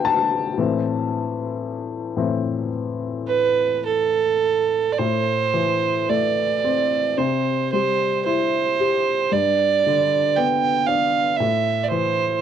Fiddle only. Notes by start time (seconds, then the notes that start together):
3.27 B4
3.86 A4
4.92 D5
4.98 C5
6.09 D5
7.17 C5
7.72 C5
8.26 C5
9.32 D5
10.37 G5
10.87 F5
11.37 E5
11.83 D5
11.88 C5